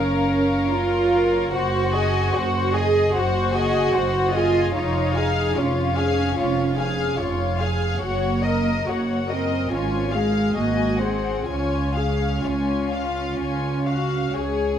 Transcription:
Already playing: F#1 C#4 A#4 C#5 F5
0.72 F4
1.53 F#1 F#4 C5 F#5
1.94 G#4 D#5 G#5
2.33 F#1 F#4 C5 F#5
2.74 G#4 D#5 G#5
3.13 F#1 F#4 C5 F#5
3.53 G#4 D#5 G#5
3.93 F#1 F#4 C5 F#5
4.32 F4 G#4 D#5 G#5
4.74 F1 D#4 F4 C#5 F5
5.15 G#4 F5 G#5
5.57 F1 C#4 F4 C#5 F5
5.96 G#4 F5 G#5
6.36 F1 F4 C#5 F5
6.77 G#4 F5 G#5
7.18 F1 F4 C#5 F5
7.60 G#4 F5 G#5
8.02 F#1 A#3 F#4 C#5 F#5
8.43 A#4 D#5
8.87 F#1 F#4 C#5 F#5
9.30 C4 A#4 D#5
9.71 G#1 C#4 F4 C#5 G#5
10.13 G#3 G#4 F5
10.55 G#1 A#3 F#4 D#5 G#5
10.99 C4 G#4 C5 F#5
11.46 C#2 C#4 F4 C#5 G#5
11.95 G#4 F5
12.43 C#2 F4 C#5 G#5
12.91 F5
13.40 C#2 C#5 G#5
13.87 F#4 F5
14.33 C#2 G#4 C#5 G#5

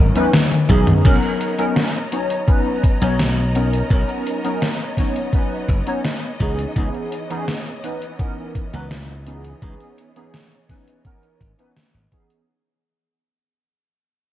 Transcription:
Already playing: E3 B3 C#4 D#4 A#4 C#5 D#5
0.15 E3 B3 C#4 D#4 B4, closed hi-hat, high conga
0.33 snare, closed hi-hat, high tom, high conga
0.51 closed hi-hat, high tom
0.69 B1 E3 B3 C#4 D#4 G#4, kick, closed hi-hat, high conga
0.87 closed hi-hat, mid tom, high conga
1.04 B1 F#3 B3 C#4 D#4 A#4 C#5 D#5 A#5, kick, closed hi-hat, crash
1.23 closed hi-hat
1.41 closed hi-hat
1.58 F#3 B3 C#4 D#4 A#4, closed hi-hat
1.76 snare, closed hi-hat
1.94 closed hi-hat
2.12 F#3 B3 C#4 D#4 C#5, closed hi-hat
2.30 closed hi-hat
2.47 F#3 B3 C#4 D#4 B4, kick, closed hi-hat
2.83 kick, closed hi-hat
3.01 B1 F#3 B3 C#4 D#4 C#5, closed hi-hat
3.19 snare, closed hi-hat
3.55 F#3 B3 C#4 D#4 A#4, closed hi-hat
3.73 closed hi-hat
3.90 B1 F#3 B3 C#4 D#4 A#4, kick, closed hi-hat
4.09 closed hi-hat
4.27 closed hi-hat
4.44 F#3 B3 C#4 D#4 A#4, closed hi-hat
4.62 snare, closed hi-hat
4.80 closed hi-hat
4.97 F#3 B3 C#4 D#4 C#5, kick, snare, closed hi-hat
5.16 closed hi-hat
5.33 F#3 B3 C#4 D#4 B4, kick, closed hi-hat
5.69 F#1, kick, closed hi-hat
5.87 F#3 B3 C#4 D#4 C#5, closed hi-hat
6.05 snare, closed hi-hat
6.40 C#2 E3 B3 C#4 D#4 G#4, kick, closed hi-hat
6.59 closed hi-hat
6.76 C#2 E3 B3 C#4 D#4 G#4, kick, closed hi-hat
6.94 closed hi-hat
7.12 closed hi-hat
7.30 E3 B3 C#4 D#4 G#4, closed hi-hat
7.48 snare, closed hi-hat
7.66 closed hi-hat
7.83 E3 B3 C#4 D#4 B4, closed hi-hat
8.02 closed hi-hat
8.19 E3 B3 C#4 D#4 A#4, kick, closed hi-hat
8.55 kick, closed hi-hat
8.73 C#2 E3 B3 C#4 D#4 B4, closed hi-hat
8.91 snare, closed hi-hat
9.26 E3 B3 C#4 D#4 G#4 C#5, closed hi-hat
9.44 closed hi-hat
9.62 C#2 E3 B3 C#4 D#4 G#4, kick, closed hi-hat
9.80 closed hi-hat
9.98 closed hi-hat
10.16 E3 B3 C#4 D#4 G#4, closed hi-hat
10.34 snare, closed hi-hat
10.52 closed hi-hat
10.69 E3 B3 C#4 D#4 B4, kick, snare, closed hi-hat
10.88 closed hi-hat
11.05 E3 B3 C#4 D#4 A#4, kick, closed hi-hat
11.23 closed hi-hat
11.40 G#1, kick, closed hi-hat
11.58 E3 B3 C#4 D#4 B4, closed hi-hat
11.77 snare, closed hi-hat
11.94 G#1
12.12 E3 B3 C#4 D#4 G#4, kick, closed hi-hat
12.30 closed hi-hat

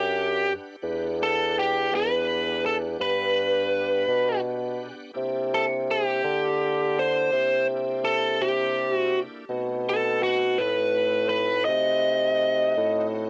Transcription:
Already playing: F#2 D4 G4 B4 F#5
0.82 E2 B3 D4 G4 F#5
1.23 A4
1.59 G4
1.92 E2 B4
2.66 A4
3.00 G2 B4
4.08 B2
5.13 C3 A#3 D4 E4 G4
5.54 A4
5.91 G4
6.24 D3
6.99 C5
7.32 C3
8.05 A4
8.41 C3 G4
8.95 F#4
9.49 B2 A3 C4 D#4 F#4
9.89 A4
10.23 F#4
10.58 A2 B4
11.29 B4
11.65 C3 D#5
12.77 A2

